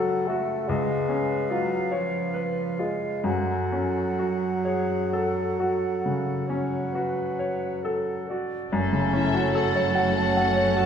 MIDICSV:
0, 0, Header, 1, 11, 480
1, 0, Start_track
1, 0, Key_signature, 3, "minor"
1, 0, Tempo, 826446
1, 1367, Tempo, 923077
1, 1839, Time_signature, 12, 3, 24, 8
1, 3287, Tempo, 888889
1, 4727, Tempo, 816327
1, 5988, End_track
2, 0, Start_track
2, 0, Title_t, "Flute"
2, 0, Program_c, 0, 73
2, 0, Note_on_c, 0, 78, 47
2, 402, Note_on_c, 0, 77, 54
2, 411, Note_off_c, 0, 78, 0
2, 1833, Note_off_c, 0, 77, 0
2, 1836, Note_on_c, 0, 78, 43
2, 4521, Note_off_c, 0, 78, 0
2, 4731, Note_on_c, 0, 93, 50
2, 5988, Note_off_c, 0, 93, 0
2, 5988, End_track
3, 0, Start_track
3, 0, Title_t, "Violin section"
3, 0, Program_c, 1, 48
3, 4970, Note_on_c, 1, 76, 59
3, 5196, Note_off_c, 1, 76, 0
3, 5219, Note_on_c, 1, 78, 54
3, 5458, Note_off_c, 1, 78, 0
3, 5466, Note_on_c, 1, 78, 67
3, 5924, Note_off_c, 1, 78, 0
3, 5934, Note_on_c, 1, 81, 67
3, 5988, Note_off_c, 1, 81, 0
3, 5988, End_track
4, 0, Start_track
4, 0, Title_t, "Clarinet"
4, 0, Program_c, 2, 71
4, 0, Note_on_c, 2, 69, 54
4, 374, Note_off_c, 2, 69, 0
4, 398, Note_on_c, 2, 71, 47
4, 1649, Note_off_c, 2, 71, 0
4, 1838, Note_on_c, 2, 69, 44
4, 2495, Note_off_c, 2, 69, 0
4, 2547, Note_on_c, 2, 68, 49
4, 2807, Note_on_c, 2, 69, 41
4, 2815, Note_off_c, 2, 68, 0
4, 3047, Note_off_c, 2, 69, 0
4, 3050, Note_on_c, 2, 69, 46
4, 3518, Note_on_c, 2, 73, 51
4, 3526, Note_off_c, 2, 69, 0
4, 3764, Note_on_c, 2, 71, 52
4, 3772, Note_off_c, 2, 73, 0
4, 4250, Note_on_c, 2, 69, 45
4, 4258, Note_off_c, 2, 71, 0
4, 4496, Note_on_c, 2, 74, 47
4, 4504, Note_off_c, 2, 69, 0
4, 4727, Note_off_c, 2, 74, 0
4, 4971, Note_on_c, 2, 64, 53
4, 5207, Note_on_c, 2, 66, 51
4, 5216, Note_off_c, 2, 64, 0
4, 5446, Note_off_c, 2, 66, 0
4, 5450, Note_on_c, 2, 66, 57
4, 5931, Note_on_c, 2, 69, 59
4, 5940, Note_off_c, 2, 66, 0
4, 5988, Note_off_c, 2, 69, 0
4, 5988, End_track
5, 0, Start_track
5, 0, Title_t, "Violin section"
5, 0, Program_c, 3, 48
5, 4726, Note_on_c, 3, 69, 60
5, 5988, Note_off_c, 3, 69, 0
5, 5988, End_track
6, 0, Start_track
6, 0, Title_t, "Grand piano"
6, 0, Program_c, 4, 0
6, 0, Control_c, 4, 64, 127
6, 0, Note_on_c, 4, 37, 57
6, 0, Note_on_c, 4, 61, 44
6, 0, Note_on_c, 4, 66, 45
6, 0, Note_on_c, 4, 69, 45
6, 0, Note_on_c, 4, 73, 47
6, 69, Note_off_c, 4, 73, 0
6, 172, Note_off_c, 4, 66, 0
6, 172, Note_on_c, 4, 66, 43
6, 307, Note_off_c, 4, 69, 0
6, 377, Note_off_c, 4, 37, 0
6, 401, Note_on_c, 4, 37, 52
6, 403, Note_off_c, 4, 66, 0
6, 409, Control_c, 4, 64, 0
6, 414, Note_off_c, 4, 61, 0
6, 515, Control_c, 4, 64, 127
6, 633, Note_on_c, 4, 61, 39
6, 872, Note_on_c, 4, 65, 43
6, 1021, Note_off_c, 4, 61, 0
6, 1112, Note_on_c, 4, 73, 44
6, 1265, Note_off_c, 4, 65, 0
6, 1358, Note_on_c, 4, 71, 39
6, 1501, Note_off_c, 4, 73, 0
6, 1595, Note_on_c, 4, 65, 37
6, 1738, Note_off_c, 4, 71, 0
6, 1820, Note_off_c, 4, 37, 0
6, 1825, Note_on_c, 4, 42, 50
6, 1838, Note_off_c, 4, 65, 0
6, 1851, Control_c, 4, 64, 0
6, 1954, Control_c, 4, 64, 127
6, 2079, Note_on_c, 4, 61, 35
6, 2322, Note_on_c, 4, 66, 39
6, 2467, Note_off_c, 4, 61, 0
6, 2560, Note_on_c, 4, 73, 42
6, 2710, Note_off_c, 4, 66, 0
6, 2811, Note_on_c, 4, 69, 40
6, 2952, Note_off_c, 4, 73, 0
6, 3054, Note_on_c, 4, 66, 38
6, 3196, Note_off_c, 4, 69, 0
6, 3260, Note_off_c, 4, 42, 0
6, 3292, Note_on_c, 4, 49, 35
6, 3433, Note_off_c, 4, 66, 0
6, 3531, Note_on_c, 4, 61, 38
6, 3672, Note_off_c, 4, 49, 0
6, 3775, Note_on_c, 4, 66, 36
6, 3912, Note_off_c, 4, 61, 0
6, 4014, Note_on_c, 4, 73, 42
6, 4159, Note_off_c, 4, 66, 0
6, 4260, Note_on_c, 4, 69, 39
6, 4402, Note_off_c, 4, 73, 0
6, 4507, Note_on_c, 4, 66, 35
6, 4641, Note_off_c, 4, 69, 0
6, 4733, Note_off_c, 4, 66, 0
6, 4733, Note_on_c, 4, 42, 57
6, 4737, Control_c, 4, 64, 0
6, 4851, Control_c, 4, 64, 127
6, 4852, Note_on_c, 4, 49, 42
6, 4973, Note_on_c, 4, 61, 45
6, 5043, Note_off_c, 4, 49, 0
6, 5096, Note_on_c, 4, 66, 45
6, 5165, Note_off_c, 4, 61, 0
6, 5219, Note_on_c, 4, 69, 47
6, 5288, Note_off_c, 4, 66, 0
6, 5340, Note_on_c, 4, 73, 50
6, 5410, Note_off_c, 4, 69, 0
6, 5455, Note_on_c, 4, 78, 49
6, 5529, Note_off_c, 4, 73, 0
6, 5583, Note_on_c, 4, 81, 50
6, 5645, Note_off_c, 4, 78, 0
6, 5700, Note_on_c, 4, 78, 48
6, 5767, Note_off_c, 4, 81, 0
6, 5814, Note_on_c, 4, 73, 51
6, 5884, Note_off_c, 4, 78, 0
6, 5934, Note_on_c, 4, 66, 46
6, 5988, Note_off_c, 4, 42, 0
6, 5988, Note_off_c, 4, 66, 0
6, 5988, Note_off_c, 4, 73, 0
6, 5988, End_track
7, 0, Start_track
7, 0, Title_t, "Viola section"
7, 0, Program_c, 5, 48
7, 4726, Note_on_c, 5, 61, 46
7, 4727, Note_on_c, 5, 57, 48
7, 5430, Note_off_c, 5, 61, 0
7, 5449, Note_on_c, 5, 61, 49
7, 5988, Note_off_c, 5, 57, 0
7, 5988, Note_off_c, 5, 61, 0
7, 5988, End_track
8, 0, Start_track
8, 0, Title_t, "French horn section"
8, 0, Program_c, 6, 60
8, 4725, Note_on_c, 6, 61, 52
8, 4727, Note_on_c, 6, 57, 49
8, 5988, Note_off_c, 6, 57, 0
8, 5988, Note_off_c, 6, 61, 0
8, 5988, End_track
9, 0, Start_track
9, 0, Title_t, "Bassoon"
9, 0, Program_c, 7, 70
9, 0, Note_on_c, 7, 54, 66
9, 159, Note_on_c, 7, 57, 65
9, 168, Note_off_c, 7, 54, 0
9, 396, Note_on_c, 7, 56, 69
9, 405, Note_off_c, 7, 57, 0
9, 882, Note_on_c, 7, 54, 60
9, 891, Note_off_c, 7, 56, 0
9, 1120, Note_on_c, 7, 53, 57
9, 1129, Note_off_c, 7, 54, 0
9, 1597, Note_on_c, 7, 56, 59
9, 1605, Note_off_c, 7, 53, 0
9, 1834, Note_off_c, 7, 56, 0
9, 1837, Note_on_c, 7, 54, 60
9, 4473, Note_off_c, 7, 54, 0
9, 4730, Note_on_c, 7, 61, 50
9, 5988, Note_off_c, 7, 61, 0
9, 5988, End_track
10, 0, Start_track
10, 0, Title_t, "Cello section"
10, 0, Program_c, 8, 48
10, 4728, Note_on_c, 8, 42, 52
10, 5988, Note_off_c, 8, 42, 0
10, 5988, End_track
11, 0, Start_track
11, 0, Title_t, "Double bass section"
11, 0, Program_c, 10, 48
11, 4722, Note_on_c, 10, 30, 57
11, 5988, Note_off_c, 10, 30, 0
11, 5988, End_track
0, 0, End_of_file